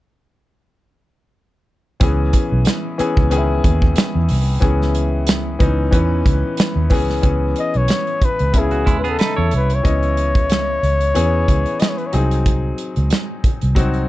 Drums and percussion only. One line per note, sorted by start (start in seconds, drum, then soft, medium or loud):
2.01 kick medium
2.01 closed hi-hat medium
2.33 kick medium
2.33 closed hi-hat medium
2.65 snare medium
2.65 closed hi-hat medium
2.99 closed hi-hat medium
3.17 kick medium
3.31 closed hi-hat medium
3.64 kick medium
3.64 closed hi-hat medium
3.82 kick medium
3.96 snare loud
3.96 closed hi-hat medium
4.29 open hi-hat medium
4.62 kick medium
4.62 closed hi-hat medium
4.82 snare soft
4.95 closed hi-hat medium
5.27 snare loud
5.27 closed hi-hat medium
5.60 kick medium
5.60 closed hi-hat medium
5.92 kick medium
5.92 closed hi-hat medium
6.26 kick medium
6.26 closed hi-hat medium
6.57 snare loud
6.57 closed hi-hat medium
6.90 kick medium
6.90 open hi-hat medium
7.10 snare soft
7.23 kick medium
7.23 closed hi-hat medium
7.56 closed hi-hat medium
7.74 closed hi-hat soft
7.88 snare medium
7.88 closed hi-hat medium
8.07 closed hi-hat soft
8.22 kick medium
8.22 closed hi-hat medium
8.39 closed hi-hat soft
8.54 kick medium
8.54 closed hi-hat medium
8.71 closed hi-hat soft
8.87 kick medium
8.87 closed hi-hat medium
9.05 closed hi-hat soft
9.19 snare loud
9.19 closed hi-hat medium
9.51 closed hi-hat medium
9.70 closed hi-hat medium
9.85 kick medium
9.85 closed hi-hat medium
10.03 closed hi-hat soft
10.17 closed hi-hat medium
10.35 kick medium
10.35 closed hi-hat soft
10.50 snare medium
10.50 closed hi-hat medium
10.83 closed hi-hat medium
11.01 closed hi-hat soft
11.15 closed hi-hat medium
11.48 kick medium
11.48 closed hi-hat medium
11.66 closed hi-hat soft
11.80 snare medium
11.80 closed hi-hat medium
11.98 closed hi-hat soft
12.13 closed hi-hat medium
12.31 closed hi-hat medium
12.46 kick medium
12.46 closed hi-hat medium
12.78 closed hi-hat medium
12.96 closed hi-hat soft
13.10 snare medium
13.10 closed hi-hat medium
13.44 kick medium
13.44 closed hi-hat medium
13.61 closed hi-hat soft
13.76 kick medium
13.76 closed hi-hat medium
13.94 closed hi-hat soft